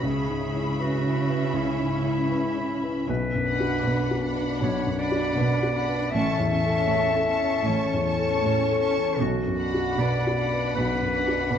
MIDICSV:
0, 0, Header, 1, 8, 480
1, 0, Start_track
1, 0, Tempo, 754717
1, 25, Time_signature, 4, 2, 24, 8
1, 1464, Tempo, 767263
1, 7270, End_track
2, 0, Start_track
2, 0, Title_t, "Violin section"
2, 0, Program_c, 0, 48
2, 0, Note_on_c, 0, 83, 50
2, 1928, Note_off_c, 0, 83, 0
2, 2198, Note_on_c, 0, 83, 46
2, 2661, Note_off_c, 0, 83, 0
2, 2675, Note_on_c, 0, 83, 48
2, 3138, Note_off_c, 0, 83, 0
2, 3145, Note_on_c, 0, 83, 48
2, 3611, Note_off_c, 0, 83, 0
2, 3620, Note_on_c, 0, 83, 46
2, 3855, Note_off_c, 0, 83, 0
2, 3862, Note_on_c, 0, 85, 49
2, 4087, Note_off_c, 0, 85, 0
2, 4094, Note_on_c, 0, 85, 50
2, 4565, Note_off_c, 0, 85, 0
2, 4583, Note_on_c, 0, 85, 47
2, 5049, Note_off_c, 0, 85, 0
2, 5060, Note_on_c, 0, 85, 50
2, 5526, Note_off_c, 0, 85, 0
2, 5533, Note_on_c, 0, 85, 49
2, 5770, Note_off_c, 0, 85, 0
2, 6018, Note_on_c, 0, 83, 50
2, 6500, Note_off_c, 0, 83, 0
2, 6507, Note_on_c, 0, 83, 45
2, 6976, Note_off_c, 0, 83, 0
2, 6994, Note_on_c, 0, 83, 42
2, 7270, Note_off_c, 0, 83, 0
2, 7270, End_track
3, 0, Start_track
3, 0, Title_t, "Violin section"
3, 0, Program_c, 1, 48
3, 19, Note_on_c, 1, 76, 52
3, 1927, Note_off_c, 1, 76, 0
3, 2195, Note_on_c, 1, 78, 48
3, 2660, Note_off_c, 1, 78, 0
3, 2669, Note_on_c, 1, 78, 49
3, 3132, Note_off_c, 1, 78, 0
3, 3139, Note_on_c, 1, 78, 49
3, 3604, Note_off_c, 1, 78, 0
3, 3611, Note_on_c, 1, 78, 48
3, 3851, Note_off_c, 1, 78, 0
3, 3862, Note_on_c, 1, 81, 51
3, 4089, Note_off_c, 1, 81, 0
3, 4096, Note_on_c, 1, 81, 50
3, 4566, Note_off_c, 1, 81, 0
3, 4579, Note_on_c, 1, 81, 49
3, 5048, Note_off_c, 1, 81, 0
3, 5062, Note_on_c, 1, 81, 52
3, 5523, Note_off_c, 1, 81, 0
3, 5531, Note_on_c, 1, 81, 45
3, 5769, Note_off_c, 1, 81, 0
3, 6019, Note_on_c, 1, 78, 47
3, 6501, Note_off_c, 1, 78, 0
3, 6518, Note_on_c, 1, 78, 47
3, 6977, Note_off_c, 1, 78, 0
3, 6985, Note_on_c, 1, 78, 44
3, 7270, Note_off_c, 1, 78, 0
3, 7270, End_track
4, 0, Start_track
4, 0, Title_t, "Clarinet"
4, 0, Program_c, 2, 71
4, 26, Note_on_c, 2, 68, 64
4, 495, Note_off_c, 2, 68, 0
4, 512, Note_on_c, 2, 66, 66
4, 987, Note_on_c, 2, 64, 80
4, 996, Note_off_c, 2, 66, 0
4, 1957, Note_off_c, 2, 64, 0
4, 1960, Note_on_c, 2, 71, 84
4, 2720, Note_off_c, 2, 71, 0
4, 2908, Note_on_c, 2, 73, 83
4, 3143, Note_on_c, 2, 74, 81
4, 3152, Note_off_c, 2, 73, 0
4, 3843, Note_on_c, 2, 76, 91
4, 3852, Note_off_c, 2, 74, 0
4, 4816, Note_on_c, 2, 73, 96
4, 4825, Note_off_c, 2, 76, 0
4, 5777, Note_on_c, 2, 66, 77
4, 5787, Note_off_c, 2, 73, 0
4, 6274, Note_on_c, 2, 74, 84
4, 6283, Note_off_c, 2, 66, 0
4, 6745, Note_off_c, 2, 74, 0
4, 6749, Note_on_c, 2, 71, 87
4, 7270, Note_off_c, 2, 71, 0
4, 7270, End_track
5, 0, Start_track
5, 0, Title_t, "Felt piano"
5, 0, Program_c, 3, 0
5, 0, Control_c, 3, 64, 127
5, 18, Note_on_c, 3, 37, 47
5, 37, Control_c, 3, 64, 0
5, 133, Control_c, 3, 64, 127
5, 177, Note_on_c, 3, 44, 36
5, 338, Note_on_c, 3, 64, 38
5, 436, Note_off_c, 3, 44, 0
5, 507, Note_on_c, 3, 71, 38
5, 597, Note_off_c, 3, 64, 0
5, 663, Note_on_c, 3, 64, 35
5, 761, Note_off_c, 3, 71, 0
5, 821, Note_on_c, 3, 71, 34
5, 919, Note_off_c, 3, 64, 0
5, 954, Note_off_c, 3, 37, 0
5, 976, Note_on_c, 3, 37, 43
5, 1077, Note_off_c, 3, 71, 0
5, 1138, Note_on_c, 3, 44, 36
5, 1295, Note_on_c, 3, 64, 41
5, 1397, Note_off_c, 3, 44, 0
5, 1463, Note_on_c, 3, 71, 42
5, 1558, Note_off_c, 3, 64, 0
5, 1632, Note_on_c, 3, 64, 39
5, 1726, Note_off_c, 3, 71, 0
5, 1796, Note_on_c, 3, 71, 39
5, 1893, Note_off_c, 3, 64, 0
5, 1927, Note_off_c, 3, 37, 0
5, 1956, Note_on_c, 3, 35, 54
5, 1957, Note_off_c, 3, 71, 0
5, 1966, Control_c, 3, 64, 0
5, 2076, Control_c, 3, 64, 127
5, 2120, Note_on_c, 3, 42, 39
5, 2277, Note_on_c, 3, 66, 39
5, 2371, Note_off_c, 3, 42, 0
5, 2441, Note_on_c, 3, 71, 40
5, 2529, Note_off_c, 3, 66, 0
5, 2595, Note_on_c, 3, 66, 40
5, 2689, Note_off_c, 3, 71, 0
5, 2749, Note_on_c, 3, 71, 41
5, 2846, Note_off_c, 3, 66, 0
5, 2882, Note_off_c, 3, 35, 0
5, 2909, Note_on_c, 3, 35, 47
5, 3002, Note_off_c, 3, 71, 0
5, 3068, Note_on_c, 3, 42, 42
5, 3224, Note_on_c, 3, 66, 41
5, 3320, Note_off_c, 3, 42, 0
5, 3384, Note_on_c, 3, 71, 45
5, 3477, Note_off_c, 3, 66, 0
5, 3546, Note_on_c, 3, 66, 41
5, 3637, Note_off_c, 3, 71, 0
5, 3706, Note_on_c, 3, 71, 42
5, 3798, Note_off_c, 3, 66, 0
5, 3836, Note_off_c, 3, 35, 0
5, 3863, Note_off_c, 3, 71, 0
5, 3868, Note_on_c, 3, 33, 59
5, 3872, Control_c, 3, 64, 0
5, 3957, Control_c, 3, 64, 127
5, 4023, Note_on_c, 3, 40, 41
5, 4191, Note_on_c, 3, 69, 40
5, 4276, Note_off_c, 3, 40, 0
5, 4340, Note_on_c, 3, 73, 45
5, 4439, Note_off_c, 3, 69, 0
5, 4507, Note_on_c, 3, 69, 41
5, 4594, Note_off_c, 3, 73, 0
5, 4676, Note_on_c, 3, 73, 43
5, 4758, Note_off_c, 3, 69, 0
5, 4796, Note_off_c, 3, 33, 0
5, 4833, Note_on_c, 3, 33, 46
5, 4922, Note_off_c, 3, 73, 0
5, 4990, Note_on_c, 3, 40, 41
5, 5149, Note_on_c, 3, 69, 44
5, 5238, Note_off_c, 3, 40, 0
5, 5311, Note_on_c, 3, 73, 43
5, 5397, Note_off_c, 3, 69, 0
5, 5463, Note_on_c, 3, 69, 42
5, 5558, Note_off_c, 3, 73, 0
5, 5628, Note_on_c, 3, 73, 44
5, 5715, Note_off_c, 3, 69, 0
5, 5758, Note_off_c, 3, 33, 0
5, 5782, Note_off_c, 3, 73, 0
5, 5786, Control_c, 3, 64, 0
5, 5788, Note_on_c, 3, 35, 56
5, 5900, Control_c, 3, 64, 127
5, 5951, Note_on_c, 3, 42, 42
5, 6119, Note_on_c, 3, 66, 39
5, 6211, Note_off_c, 3, 42, 0
5, 6282, Note_on_c, 3, 71, 44
5, 6375, Note_off_c, 3, 66, 0
5, 6448, Note_on_c, 3, 66, 41
5, 6534, Note_off_c, 3, 71, 0
5, 6609, Note_on_c, 3, 71, 40
5, 6695, Note_off_c, 3, 66, 0
5, 6732, Note_off_c, 3, 35, 0
5, 6765, Note_on_c, 3, 35, 47
5, 6854, Note_off_c, 3, 71, 0
5, 6920, Note_on_c, 3, 42, 40
5, 7080, Note_on_c, 3, 66, 39
5, 7169, Note_off_c, 3, 42, 0
5, 7239, Note_on_c, 3, 71, 41
5, 7270, Note_off_c, 3, 35, 0
5, 7270, Note_off_c, 3, 66, 0
5, 7270, Note_off_c, 3, 71, 0
5, 7270, End_track
6, 0, Start_track
6, 0, Title_t, "Harp"
6, 0, Program_c, 4, 46
6, 0, Note_on_c, 4, 71, 37
6, 34, Note_on_c, 4, 49, 51
6, 194, Note_on_c, 4, 61, 36
6, 354, Note_on_c, 4, 64, 37
6, 518, Note_on_c, 4, 73, 44
6, 669, Note_off_c, 4, 71, 0
6, 676, Note_on_c, 4, 71, 39
6, 828, Note_off_c, 4, 64, 0
6, 835, Note_on_c, 4, 64, 38
6, 995, Note_on_c, 4, 56, 40
6, 1149, Note_off_c, 4, 61, 0
6, 1156, Note_on_c, 4, 61, 38
6, 1304, Note_off_c, 4, 64, 0
6, 1311, Note_on_c, 4, 64, 42
6, 1468, Note_off_c, 4, 73, 0
6, 1626, Note_off_c, 4, 71, 0
6, 1633, Note_on_c, 4, 71, 41
6, 1790, Note_off_c, 4, 64, 0
6, 1797, Note_on_c, 4, 64, 40
6, 1958, Note_on_c, 4, 47, 53
6, 1977, Note_off_c, 4, 64, 0
6, 1979, Note_off_c, 4, 49, 0
6, 1981, Note_off_c, 4, 56, 0
6, 1982, Note_off_c, 4, 61, 0
6, 2120, Note_on_c, 4, 62, 40
6, 2275, Note_on_c, 4, 66, 39
6, 2436, Note_on_c, 4, 78, 49
6, 2587, Note_off_c, 4, 71, 0
6, 2594, Note_on_c, 4, 71, 43
6, 2744, Note_off_c, 4, 66, 0
6, 2751, Note_on_c, 4, 66, 42
6, 2910, Note_on_c, 4, 54, 44
6, 3061, Note_off_c, 4, 62, 0
6, 3069, Note_on_c, 4, 62, 45
6, 3225, Note_off_c, 4, 66, 0
6, 3233, Note_on_c, 4, 66, 46
6, 3393, Note_on_c, 4, 74, 42
6, 3543, Note_off_c, 4, 71, 0
6, 3550, Note_on_c, 4, 71, 43
6, 3702, Note_off_c, 4, 66, 0
6, 3709, Note_on_c, 4, 66, 43
6, 3871, Note_on_c, 4, 45, 54
6, 3881, Note_off_c, 4, 47, 0
6, 3881, Note_off_c, 4, 54, 0
6, 3881, Note_off_c, 4, 62, 0
6, 3881, Note_off_c, 4, 78, 0
6, 3884, Note_off_c, 4, 66, 0
6, 3884, Note_off_c, 4, 71, 0
6, 3885, Note_off_c, 4, 74, 0
6, 4026, Note_on_c, 4, 61, 43
6, 4192, Note_on_c, 4, 69, 46
6, 4344, Note_on_c, 4, 73, 50
6, 4497, Note_off_c, 4, 69, 0
6, 4504, Note_on_c, 4, 69, 46
6, 4646, Note_off_c, 4, 61, 0
6, 4654, Note_on_c, 4, 61, 43
6, 4815, Note_on_c, 4, 52, 43
6, 4975, Note_off_c, 4, 61, 0
6, 5133, Note_off_c, 4, 69, 0
6, 5140, Note_on_c, 4, 69, 47
6, 5290, Note_off_c, 4, 73, 0
6, 5454, Note_off_c, 4, 69, 0
6, 5461, Note_on_c, 4, 69, 44
6, 5774, Note_on_c, 4, 47, 57
6, 5793, Note_off_c, 4, 52, 0
6, 5798, Note_off_c, 4, 69, 0
6, 5800, Note_off_c, 4, 45, 0
6, 5941, Note_on_c, 4, 62, 43
6, 6111, Note_on_c, 4, 66, 41
6, 6274, Note_on_c, 4, 74, 51
6, 6439, Note_on_c, 4, 71, 44
6, 6595, Note_off_c, 4, 66, 0
6, 6602, Note_on_c, 4, 66, 45
6, 6758, Note_on_c, 4, 54, 42
6, 6906, Note_off_c, 4, 62, 0
6, 6913, Note_on_c, 4, 62, 39
6, 7067, Note_off_c, 4, 66, 0
6, 7075, Note_on_c, 4, 66, 40
6, 7223, Note_off_c, 4, 74, 0
6, 7230, Note_on_c, 4, 74, 38
6, 7270, Note_off_c, 4, 47, 0
6, 7270, Note_off_c, 4, 54, 0
6, 7270, Note_off_c, 4, 62, 0
6, 7270, Note_off_c, 4, 66, 0
6, 7270, Note_off_c, 4, 71, 0
6, 7270, Note_off_c, 4, 74, 0
6, 7270, End_track
7, 0, Start_track
7, 0, Title_t, "Viola section"
7, 0, Program_c, 5, 48
7, 25, Note_on_c, 5, 61, 56
7, 1930, Note_off_c, 5, 61, 0
7, 2199, Note_on_c, 5, 62, 42
7, 2660, Note_off_c, 5, 62, 0
7, 2667, Note_on_c, 5, 62, 48
7, 3129, Note_off_c, 5, 62, 0
7, 3137, Note_on_c, 5, 62, 50
7, 3607, Note_off_c, 5, 62, 0
7, 3620, Note_on_c, 5, 62, 48
7, 3855, Note_off_c, 5, 62, 0
7, 3861, Note_on_c, 5, 61, 50
7, 4093, Note_off_c, 5, 61, 0
7, 4100, Note_on_c, 5, 61, 49
7, 4565, Note_off_c, 5, 61, 0
7, 4573, Note_on_c, 5, 61, 44
7, 5044, Note_off_c, 5, 61, 0
7, 5053, Note_on_c, 5, 61, 49
7, 5523, Note_off_c, 5, 61, 0
7, 5534, Note_on_c, 5, 61, 47
7, 5770, Note_off_c, 5, 61, 0
7, 6023, Note_on_c, 5, 62, 46
7, 6503, Note_off_c, 5, 62, 0
7, 6515, Note_on_c, 5, 62, 47
7, 6980, Note_off_c, 5, 62, 0
7, 6994, Note_on_c, 5, 62, 44
7, 7270, Note_off_c, 5, 62, 0
7, 7270, End_track
8, 0, Start_track
8, 0, Title_t, "Cello section"
8, 0, Program_c, 6, 48
8, 29, Note_on_c, 6, 49, 49
8, 1957, Note_off_c, 6, 49, 0
8, 1960, Note_on_c, 6, 47, 65
8, 2362, Note_off_c, 6, 47, 0
8, 2437, Note_on_c, 6, 47, 64
8, 2837, Note_off_c, 6, 47, 0
8, 2914, Note_on_c, 6, 47, 65
8, 3313, Note_off_c, 6, 47, 0
8, 3381, Note_on_c, 6, 47, 64
8, 3787, Note_off_c, 6, 47, 0
8, 3865, Note_on_c, 6, 45, 67
8, 4268, Note_off_c, 6, 45, 0
8, 4343, Note_on_c, 6, 45, 64
8, 4746, Note_off_c, 6, 45, 0
8, 4825, Note_on_c, 6, 45, 64
8, 5226, Note_off_c, 6, 45, 0
8, 5299, Note_on_c, 6, 45, 65
8, 5703, Note_off_c, 6, 45, 0
8, 5776, Note_on_c, 6, 47, 69
8, 6197, Note_off_c, 6, 47, 0
8, 6274, Note_on_c, 6, 47, 59
8, 6679, Note_off_c, 6, 47, 0
8, 6756, Note_on_c, 6, 47, 64
8, 7157, Note_off_c, 6, 47, 0
8, 7228, Note_on_c, 6, 47, 59
8, 7270, Note_off_c, 6, 47, 0
8, 7270, End_track
0, 0, End_of_file